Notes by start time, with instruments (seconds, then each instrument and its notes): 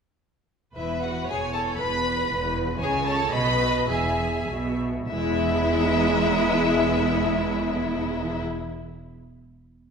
0.76 double bass section E1, cello section E2, violin section E4 E5, viola section B4
1.03 violin section F#4 F#5
1.28 double bass section E1, cello section E2, violin section G#4 G#5, viola section C#5
1.53 violin section A4 A5
1.79 double bass section E1, cello section E2, violin section B4 B5, viola section B4
2.31 double bass section E1, cello section E2
2.80 double bass section C#2, cello section C#3, violin section G#4 G#5, viola section C#5
3.07 violin section A4 A5
3.33 double bass section B1, cello section B2, violin section B4 B5, viola section D#5
3.88 double bass section E1, cello section E2, violin section G#4 G#5, viola section E5
4.47 double bass section B1, cello section B2
5.09 double bass section E1, cello section E2, viola section G#3 B3, violin section E4 E5